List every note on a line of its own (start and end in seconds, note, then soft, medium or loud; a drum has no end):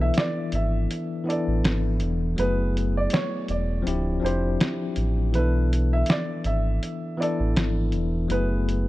0.00 0.11 B1 loud
0.00 0.77 E3 medium
0.00 0.78 B3 medium
0.00 0.79 D4 medium
0.00 0.78 E4 medium
0.00 0.80 A4 medium
0.00 0.15 E5 medium
0.14 0.50 D5 medium
0.14 snare loud
0.14 closed hi-hat medium
0.52 0.87 G#1 medium
0.52 1.23 E5 medium
0.52 closed hi-hat medium
0.91 closed hi-hat medium
1.24 2.28 E3 medium
1.24 2.29 B3 medium
1.24 2.29 E4 medium
1.29 2.30 D4 medium
1.29 2.31 A4 medium
1.29 1.82 D5 medium
1.29 closed hi-hat medium
1.48 1.62 A1 medium
1.64 2.02 G#1 medium
1.64 snare loud
1.64 closed hi-hat medium
2.00 2.35 E1 medium
2.00 closed hi-hat medium
2.36 3.08 F#1 loud
2.36 3.74 F#3 medium
2.36 3.74 A3 medium
2.36 3.75 B3 medium
2.36 2.93 B4 medium
2.36 closed hi-hat medium
2.41 3.76 E4 medium
2.41 3.76 G#4 medium
2.77 closed hi-hat medium
2.97 3.11 D5 medium
3.10 3.46 C#5 medium
3.10 snare loud
3.10 closed hi-hat medium
3.48 3.83 E1 medium
3.48 4.19 D5 medium
3.48 closed hi-hat medium
3.82 4.20 D1 loud
3.82 4.18 F3 medium
3.82 4.19 C4 medium
3.82 4.19 D4 medium
3.87 4.20 E4 medium
3.87 4.21 G4 medium
3.87 closed hi-hat medium
4.20 4.57 F1 medium
4.20 5.24 F3 medium
4.20 5.25 C4 medium
4.20 5.25 D4 medium
4.24 5.26 E4 medium
4.24 5.27 G4 medium
4.24 4.57 C5 medium
4.24 closed hi-hat medium
4.60 snare loud
4.60 closed hi-hat medium
4.96 5.35 A1 medium
4.96 closed hi-hat medium
5.32 6.03 B1 loud
5.32 6.70 E3 medium
5.32 6.71 B3 medium
5.32 6.71 E4 medium
5.32 5.89 B4 medium
5.32 closed hi-hat medium
5.37 6.72 D4 medium
5.37 6.73 A4 medium
5.73 closed hi-hat medium
5.93 6.07 E5 medium
6.06 6.42 D5 medium
6.06 snare loud
6.06 closed hi-hat medium
6.44 6.79 G#1 medium
6.44 7.15 E5 medium
6.44 closed hi-hat medium
6.83 closed hi-hat medium
7.17 8.20 E3 medium
7.17 8.21 B3 medium
7.17 8.22 E4 medium
7.17 7.74 D5 medium
7.21 8.23 D4 medium
7.21 8.23 A4 medium
7.21 closed hi-hat medium
7.40 7.55 A1 medium
7.56 7.94 G#1 medium
7.56 snare loud
7.56 closed hi-hat medium
7.92 8.27 E1 medium
7.92 closed hi-hat medium
8.28 8.88 F#1 loud
8.28 8.88 F#3 medium
8.28 8.88 A3 medium
8.28 8.88 B3 medium
8.28 8.85 B4 medium
8.28 closed hi-hat medium
8.33 8.88 E4 medium
8.33 8.88 G#4 medium
8.69 closed hi-hat medium